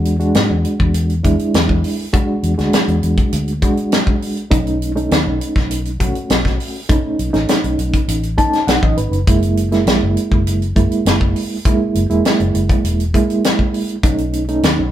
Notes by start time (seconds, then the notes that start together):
Already playing: E2 G#3 D4 F#4
0.05 closed hi-hat
0.20 G#3 D4 F#4, closed hi-hat
0.35 G#2, snare, closed hi-hat
0.50 E2
0.65 closed hi-hat
0.80 E2, kick
0.94 closed hi-hat
1.10 closed hi-hat
1.23 E2 G#3 D4 E4, kick, closed hi-hat
1.39 muted fingered electric bass stroke, closed hi-hat
1.54 E2, snare, closed hi-hat
1.69 kick
1.84 open hi-hat
2.13 G#3 D4 F#4, kick, closed hi-hat
2.43 E2, closed hi-hat
2.58 D2 G#3 D4 F#4, snare, closed hi-hat
2.73 muted fingered electric bass stroke, snare, closed hi-hat
2.88 E2, closed hi-hat
3.03 E2, closed hi-hat
3.18 kick, closed hi-hat
3.32 D2, closed hi-hat
3.48 closed hi-hat
3.62 G#3 D4 F#4, kick, closed hi-hat
3.77 closed hi-hat
3.92 snare, closed hi-hat
4.07 kick
4.22 open hi-hat
4.37 closed hi-hat
4.50 B1 A3 C#4 D#4, kick, closed hi-hat
4.67 closed hi-hat
4.82 closed hi-hat
4.96 A3 C#4 D#4, closed hi-hat
5.11 D#2, snare, closed hi-hat
5.26 B1
5.41 closed hi-hat
5.56 B1, kick, snare
5.71 closed hi-hat
5.85 closed hi-hat
6.00 B1 A3 C#4 F#4, kick, closed hi-hat
6.15 closed hi-hat
6.30 B1, snare, closed hi-hat
6.45 kick, snare
6.60 open hi-hat
6.89 A3 C#4 D#4, kick, closed hi-hat
7.19 B1, closed hi-hat
7.33 A1 A3 C#4 D#4, snare, closed hi-hat
7.49 snare, closed hi-hat
7.64 B1, closed hi-hat
7.78 B1, closed hi-hat
7.94 kick, closed hi-hat
8.08 A1, closed hi-hat
8.23 closed hi-hat
8.37 A3 C#4 D#4 A5, kick, closed hi-hat
8.53 snare, closed hi-hat
8.67 B1 F#5, snare, closed hi-hat
8.83 A1 D#5, kick
8.96 G#1 B4, closed hi-hat
9.11 F#1, closed hi-hat
9.27 F#1 G#3 A#3 E4, kick, closed hi-hat
9.42 closed hi-hat
9.57 closed hi-hat
9.72 G#3 A#3 E4, snare, closed hi-hat
9.86 A#1, snare, closed hi-hat
10.01 F#1
10.17 closed hi-hat
10.31 F#1, kick
10.47 closed hi-hat
10.62 closed hi-hat
10.76 F#1 G#3 A#3 E4, kick, closed hi-hat
10.92 closed hi-hat
11.05 F#1, snare, closed hi-hat
11.21 kick
11.36 open hi-hat
11.65 G#3 A#3 E4, kick, closed hi-hat
11.95 F#1, closed hi-hat
12.10 E1 G#3 A#3 E4, closed hi-hat
12.25 snare, closed hi-hat
12.40 F#1, closed hi-hat
12.54 F#1, closed hi-hat
12.70 kick, closed hi-hat
12.84 E1, closed hi-hat
13.00 closed hi-hat
13.14 G#3 A#3 E4, kick, closed hi-hat
13.30 closed hi-hat
13.44 snare, closed hi-hat
13.59 kick
13.74 open hi-hat
13.89 closed hi-hat
14.03 B1 A3 C#4 D#4, kick, closed hi-hat
14.18 closed hi-hat
14.33 closed hi-hat
14.48 A3 C#4 D#4, closed hi-hat
14.63 D#2, snare, closed hi-hat
14.78 B1